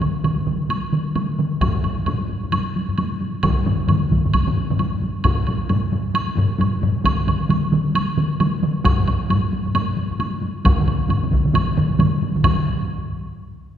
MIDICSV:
0, 0, Header, 1, 3, 480
1, 0, Start_track
1, 0, Tempo, 453858
1, 1705, Time_signature, 4, 2, 24, 8
1, 7937, Tempo, 448766
1, 14647, End_track
2, 0, Start_track
2, 0, Title_t, "Taiko and cinematic ensemble drums"
2, 16, Note_on_c, 9, 47, 91
2, 16, Note_on_c, 9, 48, 44
2, 122, Note_off_c, 9, 47, 0
2, 122, Note_off_c, 9, 48, 0
2, 158, Note_on_c, 9, 48, 19
2, 255, Note_off_c, 9, 48, 0
2, 255, Note_on_c, 9, 48, 60
2, 257, Note_on_c, 9, 47, 85
2, 360, Note_off_c, 9, 48, 0
2, 363, Note_off_c, 9, 47, 0
2, 495, Note_on_c, 9, 47, 82
2, 498, Note_on_c, 9, 48, 47
2, 601, Note_off_c, 9, 47, 0
2, 604, Note_off_c, 9, 48, 0
2, 648, Note_on_c, 9, 48, 18
2, 741, Note_off_c, 9, 48, 0
2, 741, Note_on_c, 9, 48, 58
2, 847, Note_off_c, 9, 48, 0
2, 892, Note_on_c, 9, 48, 20
2, 979, Note_on_c, 9, 47, 83
2, 985, Note_off_c, 9, 48, 0
2, 985, Note_on_c, 9, 48, 46
2, 1084, Note_off_c, 9, 47, 0
2, 1091, Note_off_c, 9, 48, 0
2, 1222, Note_on_c, 9, 47, 77
2, 1226, Note_on_c, 9, 48, 65
2, 1328, Note_off_c, 9, 47, 0
2, 1332, Note_off_c, 9, 48, 0
2, 1381, Note_on_c, 9, 48, 21
2, 1465, Note_off_c, 9, 48, 0
2, 1465, Note_on_c, 9, 48, 48
2, 1466, Note_on_c, 9, 47, 85
2, 1571, Note_off_c, 9, 48, 0
2, 1572, Note_off_c, 9, 47, 0
2, 1621, Note_on_c, 9, 48, 19
2, 1704, Note_on_c, 9, 41, 80
2, 1708, Note_on_c, 9, 45, 65
2, 1720, Note_off_c, 9, 48, 0
2, 1720, Note_on_c, 9, 48, 60
2, 1810, Note_off_c, 9, 41, 0
2, 1814, Note_off_c, 9, 45, 0
2, 1826, Note_off_c, 9, 48, 0
2, 1853, Note_on_c, 9, 45, 64
2, 1871, Note_on_c, 9, 48, 20
2, 1946, Note_off_c, 9, 45, 0
2, 1946, Note_on_c, 9, 45, 83
2, 1957, Note_off_c, 9, 48, 0
2, 1957, Note_on_c, 9, 48, 47
2, 2052, Note_off_c, 9, 45, 0
2, 2062, Note_off_c, 9, 48, 0
2, 2108, Note_on_c, 9, 48, 20
2, 2189, Note_on_c, 9, 45, 86
2, 2201, Note_off_c, 9, 48, 0
2, 2201, Note_on_c, 9, 48, 67
2, 2294, Note_off_c, 9, 45, 0
2, 2307, Note_off_c, 9, 48, 0
2, 2334, Note_on_c, 9, 48, 19
2, 2425, Note_off_c, 9, 48, 0
2, 2425, Note_on_c, 9, 48, 48
2, 2531, Note_off_c, 9, 48, 0
2, 2574, Note_on_c, 9, 45, 58
2, 2575, Note_on_c, 9, 48, 20
2, 2665, Note_off_c, 9, 45, 0
2, 2665, Note_on_c, 9, 45, 85
2, 2672, Note_off_c, 9, 48, 0
2, 2672, Note_on_c, 9, 48, 60
2, 2771, Note_off_c, 9, 45, 0
2, 2778, Note_off_c, 9, 48, 0
2, 2827, Note_on_c, 9, 48, 18
2, 2919, Note_off_c, 9, 48, 0
2, 2919, Note_on_c, 9, 48, 49
2, 3025, Note_off_c, 9, 48, 0
2, 3054, Note_on_c, 9, 45, 63
2, 3156, Note_on_c, 9, 48, 69
2, 3159, Note_off_c, 9, 45, 0
2, 3262, Note_off_c, 9, 48, 0
2, 3298, Note_on_c, 9, 48, 20
2, 3392, Note_off_c, 9, 48, 0
2, 3392, Note_on_c, 9, 48, 46
2, 3498, Note_off_c, 9, 48, 0
2, 3545, Note_on_c, 9, 48, 21
2, 3630, Note_on_c, 9, 45, 85
2, 3631, Note_on_c, 9, 41, 95
2, 3631, Note_on_c, 9, 47, 92
2, 3641, Note_off_c, 9, 48, 0
2, 3641, Note_on_c, 9, 48, 60
2, 3736, Note_off_c, 9, 45, 0
2, 3736, Note_off_c, 9, 47, 0
2, 3737, Note_off_c, 9, 41, 0
2, 3747, Note_off_c, 9, 48, 0
2, 3791, Note_on_c, 9, 48, 21
2, 3869, Note_on_c, 9, 45, 87
2, 3874, Note_on_c, 9, 47, 97
2, 3879, Note_off_c, 9, 48, 0
2, 3879, Note_on_c, 9, 48, 47
2, 3974, Note_off_c, 9, 45, 0
2, 3980, Note_off_c, 9, 47, 0
2, 3984, Note_off_c, 9, 48, 0
2, 4028, Note_on_c, 9, 48, 19
2, 4111, Note_on_c, 9, 45, 89
2, 4112, Note_on_c, 9, 47, 92
2, 4125, Note_off_c, 9, 48, 0
2, 4125, Note_on_c, 9, 48, 59
2, 4217, Note_off_c, 9, 45, 0
2, 4217, Note_off_c, 9, 47, 0
2, 4231, Note_off_c, 9, 48, 0
2, 4265, Note_on_c, 9, 48, 21
2, 4353, Note_on_c, 9, 47, 66
2, 4354, Note_on_c, 9, 41, 59
2, 4357, Note_off_c, 9, 48, 0
2, 4357, Note_on_c, 9, 48, 52
2, 4359, Note_on_c, 9, 45, 61
2, 4459, Note_off_c, 9, 41, 0
2, 4459, Note_off_c, 9, 47, 0
2, 4463, Note_off_c, 9, 48, 0
2, 4465, Note_off_c, 9, 45, 0
2, 4496, Note_on_c, 9, 45, 58
2, 4500, Note_on_c, 9, 47, 68
2, 4500, Note_on_c, 9, 48, 19
2, 4591, Note_on_c, 9, 41, 58
2, 4597, Note_off_c, 9, 48, 0
2, 4597, Note_on_c, 9, 48, 60
2, 4602, Note_off_c, 9, 45, 0
2, 4605, Note_off_c, 9, 47, 0
2, 4696, Note_off_c, 9, 41, 0
2, 4703, Note_off_c, 9, 48, 0
2, 4736, Note_on_c, 9, 45, 95
2, 4736, Note_on_c, 9, 47, 89
2, 4745, Note_on_c, 9, 48, 20
2, 4837, Note_off_c, 9, 48, 0
2, 4837, Note_on_c, 9, 48, 47
2, 4841, Note_off_c, 9, 45, 0
2, 4842, Note_off_c, 9, 47, 0
2, 4943, Note_off_c, 9, 48, 0
2, 4974, Note_on_c, 9, 45, 90
2, 4974, Note_on_c, 9, 47, 86
2, 5073, Note_on_c, 9, 48, 63
2, 5080, Note_off_c, 9, 45, 0
2, 5080, Note_off_c, 9, 47, 0
2, 5178, Note_off_c, 9, 48, 0
2, 5219, Note_on_c, 9, 48, 20
2, 5308, Note_off_c, 9, 48, 0
2, 5308, Note_on_c, 9, 48, 47
2, 5414, Note_off_c, 9, 48, 0
2, 5458, Note_on_c, 9, 48, 18
2, 5548, Note_on_c, 9, 41, 82
2, 5549, Note_off_c, 9, 48, 0
2, 5549, Note_on_c, 9, 48, 60
2, 5552, Note_on_c, 9, 45, 91
2, 5654, Note_off_c, 9, 41, 0
2, 5654, Note_off_c, 9, 48, 0
2, 5658, Note_off_c, 9, 45, 0
2, 5695, Note_on_c, 9, 48, 19
2, 5788, Note_on_c, 9, 45, 90
2, 5798, Note_off_c, 9, 48, 0
2, 5798, Note_on_c, 9, 48, 44
2, 5893, Note_off_c, 9, 45, 0
2, 5904, Note_off_c, 9, 48, 0
2, 5936, Note_on_c, 9, 48, 20
2, 6026, Note_off_c, 9, 48, 0
2, 6026, Note_on_c, 9, 45, 98
2, 6026, Note_on_c, 9, 48, 64
2, 6132, Note_off_c, 9, 45, 0
2, 6132, Note_off_c, 9, 48, 0
2, 6179, Note_on_c, 9, 48, 20
2, 6261, Note_on_c, 9, 45, 84
2, 6270, Note_off_c, 9, 48, 0
2, 6270, Note_on_c, 9, 48, 48
2, 6366, Note_off_c, 9, 45, 0
2, 6376, Note_off_c, 9, 48, 0
2, 6405, Note_on_c, 9, 48, 20
2, 6498, Note_off_c, 9, 48, 0
2, 6498, Note_on_c, 9, 48, 65
2, 6604, Note_off_c, 9, 48, 0
2, 6636, Note_on_c, 9, 48, 20
2, 6721, Note_off_c, 9, 48, 0
2, 6721, Note_on_c, 9, 48, 55
2, 6737, Note_on_c, 9, 45, 99
2, 6827, Note_off_c, 9, 48, 0
2, 6843, Note_off_c, 9, 45, 0
2, 6964, Note_on_c, 9, 48, 68
2, 6984, Note_on_c, 9, 45, 89
2, 7070, Note_off_c, 9, 48, 0
2, 7090, Note_off_c, 9, 45, 0
2, 7117, Note_on_c, 9, 48, 23
2, 7212, Note_off_c, 9, 48, 0
2, 7212, Note_on_c, 9, 48, 54
2, 7224, Note_on_c, 9, 45, 101
2, 7317, Note_off_c, 9, 48, 0
2, 7329, Note_off_c, 9, 45, 0
2, 7364, Note_on_c, 9, 48, 20
2, 7450, Note_off_c, 9, 48, 0
2, 7450, Note_on_c, 9, 47, 93
2, 7450, Note_on_c, 9, 48, 63
2, 7460, Note_on_c, 9, 41, 79
2, 7555, Note_off_c, 9, 47, 0
2, 7556, Note_off_c, 9, 48, 0
2, 7566, Note_off_c, 9, 41, 0
2, 7691, Note_on_c, 9, 48, 54
2, 7695, Note_on_c, 9, 47, 95
2, 7797, Note_off_c, 9, 48, 0
2, 7801, Note_off_c, 9, 47, 0
2, 7837, Note_on_c, 9, 48, 23
2, 7928, Note_on_c, 9, 47, 92
2, 7929, Note_off_c, 9, 48, 0
2, 7929, Note_on_c, 9, 48, 70
2, 8035, Note_off_c, 9, 47, 0
2, 8036, Note_off_c, 9, 48, 0
2, 8079, Note_on_c, 9, 48, 23
2, 8167, Note_on_c, 9, 47, 95
2, 8168, Note_off_c, 9, 48, 0
2, 8168, Note_on_c, 9, 48, 56
2, 8274, Note_off_c, 9, 47, 0
2, 8275, Note_off_c, 9, 48, 0
2, 8315, Note_on_c, 9, 48, 20
2, 8413, Note_off_c, 9, 48, 0
2, 8413, Note_on_c, 9, 48, 68
2, 8519, Note_off_c, 9, 48, 0
2, 8561, Note_on_c, 9, 48, 22
2, 8654, Note_on_c, 9, 47, 97
2, 8657, Note_off_c, 9, 48, 0
2, 8657, Note_on_c, 9, 48, 55
2, 8761, Note_off_c, 9, 47, 0
2, 8764, Note_off_c, 9, 48, 0
2, 8897, Note_on_c, 9, 47, 91
2, 8900, Note_on_c, 9, 48, 69
2, 9004, Note_off_c, 9, 47, 0
2, 9007, Note_off_c, 9, 48, 0
2, 9041, Note_on_c, 9, 48, 23
2, 9135, Note_off_c, 9, 48, 0
2, 9135, Note_on_c, 9, 48, 47
2, 9139, Note_on_c, 9, 47, 93
2, 9242, Note_off_c, 9, 48, 0
2, 9246, Note_off_c, 9, 47, 0
2, 9279, Note_on_c, 9, 48, 20
2, 9370, Note_off_c, 9, 48, 0
2, 9370, Note_on_c, 9, 48, 68
2, 9378, Note_on_c, 9, 41, 93
2, 9384, Note_on_c, 9, 45, 70
2, 9477, Note_off_c, 9, 48, 0
2, 9485, Note_off_c, 9, 41, 0
2, 9491, Note_off_c, 9, 45, 0
2, 9518, Note_on_c, 9, 48, 23
2, 9525, Note_on_c, 9, 45, 74
2, 9620, Note_off_c, 9, 45, 0
2, 9620, Note_off_c, 9, 48, 0
2, 9620, Note_on_c, 9, 45, 98
2, 9620, Note_on_c, 9, 48, 51
2, 9727, Note_off_c, 9, 45, 0
2, 9727, Note_off_c, 9, 48, 0
2, 9763, Note_on_c, 9, 48, 21
2, 9857, Note_off_c, 9, 48, 0
2, 9857, Note_on_c, 9, 48, 62
2, 9862, Note_on_c, 9, 45, 95
2, 9964, Note_off_c, 9, 48, 0
2, 9969, Note_off_c, 9, 45, 0
2, 10009, Note_on_c, 9, 48, 21
2, 10103, Note_off_c, 9, 48, 0
2, 10103, Note_on_c, 9, 48, 49
2, 10210, Note_off_c, 9, 48, 0
2, 10249, Note_on_c, 9, 45, 63
2, 10249, Note_on_c, 9, 48, 21
2, 10335, Note_off_c, 9, 48, 0
2, 10335, Note_on_c, 9, 48, 66
2, 10340, Note_off_c, 9, 45, 0
2, 10340, Note_on_c, 9, 45, 96
2, 10442, Note_off_c, 9, 48, 0
2, 10447, Note_off_c, 9, 45, 0
2, 10481, Note_on_c, 9, 48, 20
2, 10571, Note_off_c, 9, 48, 0
2, 10571, Note_on_c, 9, 48, 51
2, 10678, Note_off_c, 9, 48, 0
2, 10723, Note_on_c, 9, 45, 69
2, 10815, Note_on_c, 9, 48, 65
2, 10830, Note_off_c, 9, 45, 0
2, 10922, Note_off_c, 9, 48, 0
2, 10964, Note_on_c, 9, 48, 20
2, 11058, Note_off_c, 9, 48, 0
2, 11058, Note_on_c, 9, 48, 49
2, 11165, Note_off_c, 9, 48, 0
2, 11200, Note_on_c, 9, 48, 20
2, 11298, Note_off_c, 9, 48, 0
2, 11298, Note_on_c, 9, 48, 55
2, 11302, Note_on_c, 9, 45, 73
2, 11308, Note_on_c, 9, 41, 111
2, 11308, Note_on_c, 9, 47, 68
2, 11405, Note_off_c, 9, 48, 0
2, 11409, Note_off_c, 9, 45, 0
2, 11415, Note_off_c, 9, 41, 0
2, 11415, Note_off_c, 9, 47, 0
2, 11441, Note_on_c, 9, 45, 71
2, 11443, Note_on_c, 9, 48, 21
2, 11449, Note_on_c, 9, 47, 70
2, 11538, Note_off_c, 9, 45, 0
2, 11538, Note_off_c, 9, 48, 0
2, 11538, Note_on_c, 9, 45, 70
2, 11538, Note_on_c, 9, 48, 47
2, 11543, Note_off_c, 9, 47, 0
2, 11543, Note_on_c, 9, 47, 67
2, 11645, Note_off_c, 9, 45, 0
2, 11645, Note_off_c, 9, 48, 0
2, 11650, Note_off_c, 9, 47, 0
2, 11680, Note_on_c, 9, 48, 21
2, 11776, Note_off_c, 9, 48, 0
2, 11776, Note_on_c, 9, 45, 73
2, 11776, Note_on_c, 9, 48, 63
2, 11788, Note_on_c, 9, 47, 73
2, 11883, Note_off_c, 9, 45, 0
2, 11883, Note_off_c, 9, 48, 0
2, 11895, Note_off_c, 9, 47, 0
2, 11917, Note_on_c, 9, 48, 21
2, 11923, Note_on_c, 9, 45, 65
2, 11925, Note_on_c, 9, 47, 75
2, 12011, Note_off_c, 9, 47, 0
2, 12011, Note_off_c, 9, 48, 0
2, 12011, Note_on_c, 9, 47, 74
2, 12011, Note_on_c, 9, 48, 49
2, 12019, Note_off_c, 9, 45, 0
2, 12019, Note_on_c, 9, 45, 69
2, 12029, Note_on_c, 9, 41, 70
2, 12118, Note_off_c, 9, 47, 0
2, 12118, Note_off_c, 9, 48, 0
2, 12126, Note_off_c, 9, 45, 0
2, 12136, Note_off_c, 9, 41, 0
2, 12155, Note_on_c, 9, 47, 69
2, 12160, Note_on_c, 9, 48, 20
2, 12161, Note_on_c, 9, 45, 66
2, 12247, Note_off_c, 9, 47, 0
2, 12247, Note_on_c, 9, 47, 98
2, 12256, Note_off_c, 9, 45, 0
2, 12256, Note_off_c, 9, 48, 0
2, 12256, Note_on_c, 9, 45, 97
2, 12256, Note_on_c, 9, 48, 68
2, 12263, Note_on_c, 9, 41, 66
2, 12354, Note_off_c, 9, 47, 0
2, 12363, Note_off_c, 9, 45, 0
2, 12363, Note_off_c, 9, 48, 0
2, 12370, Note_off_c, 9, 41, 0
2, 12399, Note_on_c, 9, 48, 21
2, 12494, Note_off_c, 9, 48, 0
2, 12494, Note_on_c, 9, 48, 52
2, 12495, Note_on_c, 9, 47, 97
2, 12499, Note_on_c, 9, 45, 106
2, 12601, Note_off_c, 9, 48, 0
2, 12602, Note_off_c, 9, 47, 0
2, 12606, Note_off_c, 9, 45, 0
2, 12638, Note_on_c, 9, 48, 49
2, 12733, Note_off_c, 9, 48, 0
2, 12733, Note_on_c, 9, 48, 70
2, 12736, Note_on_c, 9, 47, 98
2, 12745, Note_on_c, 9, 45, 92
2, 12840, Note_off_c, 9, 48, 0
2, 12843, Note_off_c, 9, 47, 0
2, 12852, Note_off_c, 9, 45, 0
2, 12882, Note_on_c, 9, 48, 22
2, 12985, Note_off_c, 9, 48, 0
2, 12985, Note_on_c, 9, 48, 50
2, 13092, Note_off_c, 9, 48, 0
2, 13123, Note_on_c, 9, 47, 65
2, 13127, Note_on_c, 9, 45, 69
2, 13129, Note_on_c, 9, 48, 23
2, 13216, Note_off_c, 9, 45, 0
2, 13216, Note_off_c, 9, 47, 0
2, 13216, Note_on_c, 9, 45, 106
2, 13216, Note_on_c, 9, 47, 113
2, 13223, Note_on_c, 9, 41, 78
2, 13226, Note_off_c, 9, 48, 0
2, 13226, Note_on_c, 9, 48, 70
2, 13323, Note_off_c, 9, 45, 0
2, 13323, Note_off_c, 9, 47, 0
2, 13330, Note_off_c, 9, 41, 0
2, 13333, Note_off_c, 9, 48, 0
2, 14647, End_track
3, 0, Start_track
3, 0, Title_t, "Drums"
3, 18, Note_on_c, 9, 76, 32
3, 123, Note_off_c, 9, 76, 0
3, 258, Note_on_c, 9, 76, 38
3, 364, Note_off_c, 9, 76, 0
3, 742, Note_on_c, 9, 76, 47
3, 848, Note_off_c, 9, 76, 0
3, 1222, Note_on_c, 9, 76, 37
3, 1328, Note_off_c, 9, 76, 0
3, 1707, Note_on_c, 9, 76, 50
3, 1813, Note_off_c, 9, 76, 0
3, 1947, Note_on_c, 9, 76, 38
3, 2052, Note_off_c, 9, 76, 0
3, 2182, Note_on_c, 9, 76, 40
3, 2288, Note_off_c, 9, 76, 0
3, 2668, Note_on_c, 9, 76, 53
3, 2774, Note_off_c, 9, 76, 0
3, 3148, Note_on_c, 9, 76, 41
3, 3253, Note_off_c, 9, 76, 0
3, 3627, Note_on_c, 9, 76, 53
3, 3732, Note_off_c, 9, 76, 0
3, 4110, Note_on_c, 9, 76, 43
3, 4215, Note_off_c, 9, 76, 0
3, 4586, Note_on_c, 9, 76, 51
3, 4691, Note_off_c, 9, 76, 0
3, 5069, Note_on_c, 9, 76, 41
3, 5175, Note_off_c, 9, 76, 0
3, 5542, Note_on_c, 9, 76, 49
3, 5647, Note_off_c, 9, 76, 0
3, 5783, Note_on_c, 9, 76, 38
3, 5889, Note_off_c, 9, 76, 0
3, 6022, Note_on_c, 9, 76, 42
3, 6128, Note_off_c, 9, 76, 0
3, 6504, Note_on_c, 9, 76, 55
3, 6610, Note_off_c, 9, 76, 0
3, 6990, Note_on_c, 9, 76, 45
3, 7096, Note_off_c, 9, 76, 0
3, 7462, Note_on_c, 9, 76, 61
3, 7568, Note_off_c, 9, 76, 0
3, 7700, Note_on_c, 9, 76, 44
3, 7806, Note_off_c, 9, 76, 0
3, 7936, Note_on_c, 9, 76, 49
3, 8043, Note_off_c, 9, 76, 0
3, 8418, Note_on_c, 9, 76, 58
3, 8525, Note_off_c, 9, 76, 0
3, 8897, Note_on_c, 9, 76, 51
3, 9003, Note_off_c, 9, 76, 0
3, 9379, Note_on_c, 9, 76, 65
3, 9486, Note_off_c, 9, 76, 0
3, 9617, Note_on_c, 9, 76, 44
3, 9724, Note_off_c, 9, 76, 0
3, 9862, Note_on_c, 9, 76, 47
3, 9969, Note_off_c, 9, 76, 0
3, 10338, Note_on_c, 9, 76, 56
3, 10445, Note_off_c, 9, 76, 0
3, 10819, Note_on_c, 9, 76, 46
3, 10926, Note_off_c, 9, 76, 0
3, 11303, Note_on_c, 9, 76, 58
3, 11410, Note_off_c, 9, 76, 0
3, 11545, Note_on_c, 9, 76, 39
3, 11652, Note_off_c, 9, 76, 0
3, 11785, Note_on_c, 9, 76, 45
3, 11892, Note_off_c, 9, 76, 0
3, 12265, Note_on_c, 9, 76, 57
3, 12372, Note_off_c, 9, 76, 0
3, 12744, Note_on_c, 9, 76, 46
3, 12850, Note_off_c, 9, 76, 0
3, 13218, Note_on_c, 9, 76, 75
3, 13325, Note_off_c, 9, 76, 0
3, 14647, End_track
0, 0, End_of_file